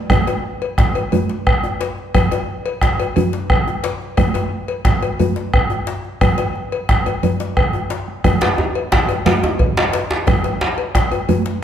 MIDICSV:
0, 0, Header, 1, 4, 480
1, 0, Start_track
1, 0, Tempo, 338600
1, 157, Time_signature, 12, 3, 24, 8
1, 16492, End_track
2, 0, Start_track
2, 0, Title_t, "Bombo"
2, 139, Note_on_c, 9, 37, 104
2, 139, Note_on_c, 9, 43, 109
2, 281, Note_off_c, 9, 37, 0
2, 281, Note_off_c, 9, 43, 0
2, 381, Note_on_c, 9, 37, 33
2, 523, Note_off_c, 9, 37, 0
2, 1104, Note_on_c, 9, 37, 101
2, 1104, Note_on_c, 9, 43, 101
2, 1246, Note_off_c, 9, 37, 0
2, 1246, Note_off_c, 9, 43, 0
2, 2081, Note_on_c, 9, 37, 106
2, 2081, Note_on_c, 9, 43, 95
2, 2223, Note_off_c, 9, 37, 0
2, 2223, Note_off_c, 9, 43, 0
2, 3042, Note_on_c, 9, 37, 92
2, 3042, Note_on_c, 9, 43, 100
2, 3184, Note_off_c, 9, 37, 0
2, 3184, Note_off_c, 9, 43, 0
2, 3282, Note_on_c, 9, 37, 27
2, 3423, Note_off_c, 9, 37, 0
2, 3991, Note_on_c, 9, 37, 99
2, 3991, Note_on_c, 9, 43, 93
2, 4132, Note_off_c, 9, 37, 0
2, 4132, Note_off_c, 9, 43, 0
2, 4959, Note_on_c, 9, 37, 98
2, 4959, Note_on_c, 9, 43, 104
2, 5101, Note_off_c, 9, 37, 0
2, 5101, Note_off_c, 9, 43, 0
2, 5921, Note_on_c, 9, 37, 95
2, 5921, Note_on_c, 9, 43, 95
2, 6063, Note_off_c, 9, 37, 0
2, 6063, Note_off_c, 9, 43, 0
2, 6162, Note_on_c, 9, 37, 30
2, 6304, Note_off_c, 9, 37, 0
2, 6872, Note_on_c, 9, 37, 95
2, 6872, Note_on_c, 9, 43, 96
2, 7014, Note_off_c, 9, 37, 0
2, 7014, Note_off_c, 9, 43, 0
2, 7847, Note_on_c, 9, 37, 109
2, 7847, Note_on_c, 9, 43, 102
2, 7989, Note_off_c, 9, 37, 0
2, 7989, Note_off_c, 9, 43, 0
2, 8808, Note_on_c, 9, 37, 109
2, 8808, Note_on_c, 9, 43, 107
2, 8950, Note_off_c, 9, 37, 0
2, 8950, Note_off_c, 9, 43, 0
2, 9057, Note_on_c, 9, 37, 32
2, 9198, Note_off_c, 9, 37, 0
2, 9291, Note_on_c, 9, 37, 36
2, 9433, Note_off_c, 9, 37, 0
2, 9539, Note_on_c, 9, 37, 33
2, 9681, Note_off_c, 9, 37, 0
2, 9767, Note_on_c, 9, 37, 103
2, 9767, Note_on_c, 9, 43, 100
2, 9909, Note_off_c, 9, 37, 0
2, 9909, Note_off_c, 9, 43, 0
2, 10729, Note_on_c, 9, 37, 93
2, 10729, Note_on_c, 9, 43, 102
2, 10870, Note_off_c, 9, 37, 0
2, 10870, Note_off_c, 9, 43, 0
2, 10975, Note_on_c, 9, 37, 29
2, 11117, Note_off_c, 9, 37, 0
2, 11213, Note_on_c, 9, 37, 33
2, 11354, Note_off_c, 9, 37, 0
2, 11450, Note_on_c, 9, 37, 31
2, 11591, Note_off_c, 9, 37, 0
2, 11686, Note_on_c, 9, 37, 100
2, 11686, Note_on_c, 9, 43, 104
2, 11828, Note_off_c, 9, 37, 0
2, 11828, Note_off_c, 9, 43, 0
2, 11928, Note_on_c, 9, 37, 30
2, 12069, Note_off_c, 9, 37, 0
2, 12651, Note_on_c, 9, 37, 99
2, 12651, Note_on_c, 9, 43, 101
2, 12793, Note_off_c, 9, 37, 0
2, 12793, Note_off_c, 9, 43, 0
2, 13602, Note_on_c, 9, 43, 107
2, 13744, Note_off_c, 9, 43, 0
2, 14570, Note_on_c, 9, 37, 101
2, 14570, Note_on_c, 9, 43, 101
2, 14712, Note_off_c, 9, 37, 0
2, 14712, Note_off_c, 9, 43, 0
2, 14805, Note_on_c, 9, 37, 30
2, 14947, Note_off_c, 9, 37, 0
2, 15519, Note_on_c, 9, 37, 99
2, 15519, Note_on_c, 9, 43, 97
2, 15661, Note_off_c, 9, 37, 0
2, 15661, Note_off_c, 9, 43, 0
2, 16492, End_track
3, 0, Start_track
3, 0, Title_t, "Djembe"
3, 157, Note_on_c, 9, 62, 22
3, 157, Note_on_c, 9, 64, 67
3, 298, Note_off_c, 9, 62, 0
3, 298, Note_off_c, 9, 64, 0
3, 391, Note_on_c, 9, 62, 50
3, 391, Note_on_c, 9, 63, 54
3, 533, Note_off_c, 9, 62, 0
3, 533, Note_off_c, 9, 63, 0
3, 875, Note_on_c, 9, 62, 20
3, 1017, Note_off_c, 9, 62, 0
3, 1113, Note_on_c, 9, 62, 66
3, 1255, Note_off_c, 9, 62, 0
3, 1361, Note_on_c, 9, 63, 47
3, 1502, Note_off_c, 9, 63, 0
3, 1599, Note_on_c, 9, 64, 64
3, 1741, Note_off_c, 9, 64, 0
3, 1835, Note_on_c, 9, 62, 47
3, 1977, Note_off_c, 9, 62, 0
3, 2319, Note_on_c, 9, 62, 20
3, 2319, Note_on_c, 9, 63, 49
3, 2460, Note_off_c, 9, 62, 0
3, 2460, Note_off_c, 9, 63, 0
3, 2562, Note_on_c, 9, 62, 62
3, 2704, Note_off_c, 9, 62, 0
3, 2807, Note_on_c, 9, 62, 19
3, 2949, Note_off_c, 9, 62, 0
3, 3043, Note_on_c, 9, 62, 19
3, 3043, Note_on_c, 9, 64, 63
3, 3185, Note_off_c, 9, 62, 0
3, 3185, Note_off_c, 9, 64, 0
3, 3289, Note_on_c, 9, 62, 48
3, 3289, Note_on_c, 9, 63, 49
3, 3431, Note_off_c, 9, 62, 0
3, 3431, Note_off_c, 9, 63, 0
3, 3771, Note_on_c, 9, 62, 19
3, 3913, Note_off_c, 9, 62, 0
3, 4005, Note_on_c, 9, 62, 64
3, 4147, Note_off_c, 9, 62, 0
3, 4252, Note_on_c, 9, 63, 52
3, 4393, Note_off_c, 9, 63, 0
3, 4496, Note_on_c, 9, 64, 68
3, 4638, Note_off_c, 9, 64, 0
3, 4722, Note_on_c, 9, 62, 57
3, 4864, Note_off_c, 9, 62, 0
3, 5210, Note_on_c, 9, 62, 23
3, 5210, Note_on_c, 9, 63, 55
3, 5352, Note_off_c, 9, 62, 0
3, 5352, Note_off_c, 9, 63, 0
3, 5441, Note_on_c, 9, 62, 74
3, 5583, Note_off_c, 9, 62, 0
3, 5696, Note_on_c, 9, 62, 23
3, 5837, Note_off_c, 9, 62, 0
3, 5925, Note_on_c, 9, 62, 23
3, 5925, Note_on_c, 9, 64, 79
3, 6067, Note_off_c, 9, 62, 0
3, 6067, Note_off_c, 9, 64, 0
3, 6166, Note_on_c, 9, 62, 58
3, 6166, Note_on_c, 9, 63, 59
3, 6307, Note_off_c, 9, 62, 0
3, 6307, Note_off_c, 9, 63, 0
3, 6641, Note_on_c, 9, 62, 23
3, 6783, Note_off_c, 9, 62, 0
3, 6875, Note_on_c, 9, 62, 73
3, 7016, Note_off_c, 9, 62, 0
3, 7122, Note_on_c, 9, 63, 55
3, 7263, Note_off_c, 9, 63, 0
3, 7369, Note_on_c, 9, 64, 72
3, 7510, Note_off_c, 9, 64, 0
3, 7600, Note_on_c, 9, 62, 54
3, 7742, Note_off_c, 9, 62, 0
3, 8081, Note_on_c, 9, 62, 23
3, 8081, Note_on_c, 9, 63, 55
3, 8222, Note_off_c, 9, 62, 0
3, 8222, Note_off_c, 9, 63, 0
3, 8322, Note_on_c, 9, 62, 71
3, 8463, Note_off_c, 9, 62, 0
3, 8572, Note_on_c, 9, 62, 22
3, 8714, Note_off_c, 9, 62, 0
3, 8808, Note_on_c, 9, 62, 23
3, 8808, Note_on_c, 9, 64, 74
3, 8949, Note_off_c, 9, 62, 0
3, 8949, Note_off_c, 9, 64, 0
3, 9043, Note_on_c, 9, 62, 55
3, 9043, Note_on_c, 9, 63, 53
3, 9185, Note_off_c, 9, 62, 0
3, 9185, Note_off_c, 9, 63, 0
3, 9292, Note_on_c, 9, 62, 23
3, 9434, Note_off_c, 9, 62, 0
3, 9767, Note_on_c, 9, 62, 66
3, 9909, Note_off_c, 9, 62, 0
3, 10014, Note_on_c, 9, 62, 22
3, 10014, Note_on_c, 9, 63, 54
3, 10155, Note_off_c, 9, 62, 0
3, 10155, Note_off_c, 9, 63, 0
3, 10253, Note_on_c, 9, 62, 21
3, 10253, Note_on_c, 9, 64, 65
3, 10394, Note_off_c, 9, 62, 0
3, 10394, Note_off_c, 9, 64, 0
3, 10491, Note_on_c, 9, 62, 58
3, 10633, Note_off_c, 9, 62, 0
3, 10963, Note_on_c, 9, 63, 56
3, 11105, Note_off_c, 9, 63, 0
3, 11202, Note_on_c, 9, 62, 68
3, 11344, Note_off_c, 9, 62, 0
3, 11687, Note_on_c, 9, 62, 24
3, 11687, Note_on_c, 9, 64, 79
3, 11829, Note_off_c, 9, 62, 0
3, 11829, Note_off_c, 9, 64, 0
3, 11924, Note_on_c, 9, 62, 61
3, 11924, Note_on_c, 9, 63, 57
3, 11930, Note_off_c, 9, 62, 0
3, 11930, Note_on_c, 9, 62, 81
3, 12066, Note_off_c, 9, 63, 0
3, 12072, Note_off_c, 9, 62, 0
3, 12165, Note_on_c, 9, 63, 84
3, 12306, Note_off_c, 9, 63, 0
3, 12404, Note_on_c, 9, 62, 23
3, 12545, Note_off_c, 9, 62, 0
3, 12645, Note_on_c, 9, 62, 75
3, 12646, Note_off_c, 9, 62, 0
3, 12646, Note_on_c, 9, 62, 82
3, 12788, Note_off_c, 9, 62, 0
3, 12886, Note_on_c, 9, 63, 60
3, 13028, Note_off_c, 9, 63, 0
3, 13128, Note_on_c, 9, 62, 84
3, 13130, Note_on_c, 9, 64, 75
3, 13270, Note_off_c, 9, 62, 0
3, 13271, Note_off_c, 9, 64, 0
3, 13373, Note_on_c, 9, 63, 76
3, 13379, Note_on_c, 9, 62, 59
3, 13515, Note_off_c, 9, 63, 0
3, 13521, Note_off_c, 9, 62, 0
3, 13853, Note_on_c, 9, 62, 23
3, 13853, Note_on_c, 9, 63, 60
3, 13855, Note_off_c, 9, 62, 0
3, 13855, Note_on_c, 9, 62, 84
3, 13995, Note_off_c, 9, 63, 0
3, 13997, Note_off_c, 9, 62, 0
3, 14082, Note_on_c, 9, 62, 76
3, 14224, Note_off_c, 9, 62, 0
3, 14326, Note_on_c, 9, 62, 74
3, 14330, Note_off_c, 9, 62, 0
3, 14330, Note_on_c, 9, 62, 23
3, 14472, Note_off_c, 9, 62, 0
3, 14557, Note_on_c, 9, 62, 24
3, 14557, Note_on_c, 9, 64, 71
3, 14571, Note_on_c, 9, 63, 80
3, 14698, Note_off_c, 9, 62, 0
3, 14698, Note_off_c, 9, 64, 0
3, 14712, Note_off_c, 9, 63, 0
3, 14802, Note_on_c, 9, 62, 55
3, 14944, Note_off_c, 9, 62, 0
3, 15043, Note_on_c, 9, 62, 84
3, 15185, Note_off_c, 9, 62, 0
3, 15287, Note_on_c, 9, 62, 22
3, 15429, Note_off_c, 9, 62, 0
3, 15526, Note_on_c, 9, 62, 75
3, 15668, Note_off_c, 9, 62, 0
3, 15762, Note_on_c, 9, 63, 60
3, 15903, Note_off_c, 9, 63, 0
3, 16003, Note_on_c, 9, 64, 75
3, 16144, Note_off_c, 9, 64, 0
3, 16241, Note_on_c, 9, 62, 61
3, 16383, Note_off_c, 9, 62, 0
3, 16492, End_track
4, 0, Start_track
4, 0, Title_t, "Drums"
4, 146, Note_on_c, 9, 56, 61
4, 150, Note_on_c, 9, 63, 63
4, 150, Note_on_c, 9, 64, 62
4, 287, Note_off_c, 9, 56, 0
4, 292, Note_off_c, 9, 63, 0
4, 292, Note_off_c, 9, 64, 0
4, 387, Note_on_c, 9, 56, 47
4, 528, Note_off_c, 9, 56, 0
4, 876, Note_on_c, 9, 56, 51
4, 1018, Note_off_c, 9, 56, 0
4, 1118, Note_on_c, 9, 63, 19
4, 1260, Note_off_c, 9, 63, 0
4, 1351, Note_on_c, 9, 56, 47
4, 1492, Note_off_c, 9, 56, 0
4, 1590, Note_on_c, 9, 56, 48
4, 1599, Note_on_c, 9, 63, 62
4, 1599, Note_on_c, 9, 64, 58
4, 1731, Note_off_c, 9, 56, 0
4, 1740, Note_off_c, 9, 63, 0
4, 1740, Note_off_c, 9, 64, 0
4, 2078, Note_on_c, 9, 56, 49
4, 2220, Note_off_c, 9, 56, 0
4, 2559, Note_on_c, 9, 56, 48
4, 2701, Note_off_c, 9, 56, 0
4, 3041, Note_on_c, 9, 56, 65
4, 3045, Note_on_c, 9, 63, 57
4, 3045, Note_on_c, 9, 64, 57
4, 3183, Note_off_c, 9, 56, 0
4, 3186, Note_off_c, 9, 63, 0
4, 3186, Note_off_c, 9, 64, 0
4, 3282, Note_on_c, 9, 56, 55
4, 3424, Note_off_c, 9, 56, 0
4, 3765, Note_on_c, 9, 56, 57
4, 3906, Note_off_c, 9, 56, 0
4, 4013, Note_on_c, 9, 63, 20
4, 4155, Note_off_c, 9, 63, 0
4, 4247, Note_on_c, 9, 56, 50
4, 4388, Note_off_c, 9, 56, 0
4, 4480, Note_on_c, 9, 56, 50
4, 4489, Note_on_c, 9, 63, 69
4, 4489, Note_on_c, 9, 64, 68
4, 4622, Note_off_c, 9, 56, 0
4, 4630, Note_off_c, 9, 63, 0
4, 4630, Note_off_c, 9, 64, 0
4, 4962, Note_on_c, 9, 56, 53
4, 5103, Note_off_c, 9, 56, 0
4, 5437, Note_on_c, 9, 56, 46
4, 5579, Note_off_c, 9, 56, 0
4, 5916, Note_on_c, 9, 56, 61
4, 5931, Note_on_c, 9, 63, 75
4, 5931, Note_on_c, 9, 64, 68
4, 6058, Note_off_c, 9, 56, 0
4, 6073, Note_off_c, 9, 63, 0
4, 6073, Note_off_c, 9, 64, 0
4, 6156, Note_on_c, 9, 56, 46
4, 6298, Note_off_c, 9, 56, 0
4, 6639, Note_on_c, 9, 56, 53
4, 6780, Note_off_c, 9, 56, 0
4, 6894, Note_on_c, 9, 63, 21
4, 7036, Note_off_c, 9, 63, 0
4, 7123, Note_on_c, 9, 56, 48
4, 7265, Note_off_c, 9, 56, 0
4, 7364, Note_on_c, 9, 56, 44
4, 7375, Note_on_c, 9, 63, 64
4, 7375, Note_on_c, 9, 64, 60
4, 7506, Note_off_c, 9, 56, 0
4, 7517, Note_off_c, 9, 63, 0
4, 7517, Note_off_c, 9, 64, 0
4, 7848, Note_on_c, 9, 56, 51
4, 7989, Note_off_c, 9, 56, 0
4, 8807, Note_on_c, 9, 56, 68
4, 8811, Note_on_c, 9, 63, 55
4, 8811, Note_on_c, 9, 64, 55
4, 8948, Note_off_c, 9, 56, 0
4, 8953, Note_off_c, 9, 63, 0
4, 8953, Note_off_c, 9, 64, 0
4, 9042, Note_on_c, 9, 56, 51
4, 9184, Note_off_c, 9, 56, 0
4, 9531, Note_on_c, 9, 56, 55
4, 9673, Note_off_c, 9, 56, 0
4, 10011, Note_on_c, 9, 56, 46
4, 10020, Note_on_c, 9, 63, 21
4, 10152, Note_off_c, 9, 56, 0
4, 10162, Note_off_c, 9, 63, 0
4, 10251, Note_on_c, 9, 56, 46
4, 10255, Note_on_c, 9, 63, 58
4, 10255, Note_on_c, 9, 64, 57
4, 10393, Note_off_c, 9, 56, 0
4, 10396, Note_off_c, 9, 63, 0
4, 10396, Note_off_c, 9, 64, 0
4, 10504, Note_on_c, 9, 63, 20
4, 10646, Note_off_c, 9, 63, 0
4, 10729, Note_on_c, 9, 56, 53
4, 10871, Note_off_c, 9, 56, 0
4, 11452, Note_on_c, 9, 63, 20
4, 11594, Note_off_c, 9, 63, 0
4, 11689, Note_on_c, 9, 56, 59
4, 11690, Note_on_c, 9, 63, 69
4, 11690, Note_on_c, 9, 64, 73
4, 11831, Note_off_c, 9, 56, 0
4, 11832, Note_off_c, 9, 63, 0
4, 11832, Note_off_c, 9, 64, 0
4, 11935, Note_on_c, 9, 56, 52
4, 12076, Note_off_c, 9, 56, 0
4, 12410, Note_on_c, 9, 56, 52
4, 12552, Note_off_c, 9, 56, 0
4, 12659, Note_on_c, 9, 63, 25
4, 12801, Note_off_c, 9, 63, 0
4, 12881, Note_on_c, 9, 56, 45
4, 13023, Note_off_c, 9, 56, 0
4, 13125, Note_on_c, 9, 56, 47
4, 13130, Note_on_c, 9, 63, 72
4, 13130, Note_on_c, 9, 64, 83
4, 13267, Note_off_c, 9, 56, 0
4, 13271, Note_off_c, 9, 63, 0
4, 13271, Note_off_c, 9, 64, 0
4, 13599, Note_on_c, 9, 56, 50
4, 13741, Note_off_c, 9, 56, 0
4, 14083, Note_on_c, 9, 56, 44
4, 14225, Note_off_c, 9, 56, 0
4, 14564, Note_on_c, 9, 56, 54
4, 14569, Note_on_c, 9, 63, 82
4, 14569, Note_on_c, 9, 64, 79
4, 14705, Note_off_c, 9, 56, 0
4, 14711, Note_off_c, 9, 63, 0
4, 14711, Note_off_c, 9, 64, 0
4, 14805, Note_on_c, 9, 56, 47
4, 14947, Note_off_c, 9, 56, 0
4, 15278, Note_on_c, 9, 56, 51
4, 15420, Note_off_c, 9, 56, 0
4, 15525, Note_on_c, 9, 63, 26
4, 15667, Note_off_c, 9, 63, 0
4, 15757, Note_on_c, 9, 56, 46
4, 15899, Note_off_c, 9, 56, 0
4, 16000, Note_on_c, 9, 56, 45
4, 16006, Note_on_c, 9, 63, 87
4, 16006, Note_on_c, 9, 64, 77
4, 16142, Note_off_c, 9, 56, 0
4, 16147, Note_off_c, 9, 63, 0
4, 16147, Note_off_c, 9, 64, 0
4, 16492, End_track
0, 0, End_of_file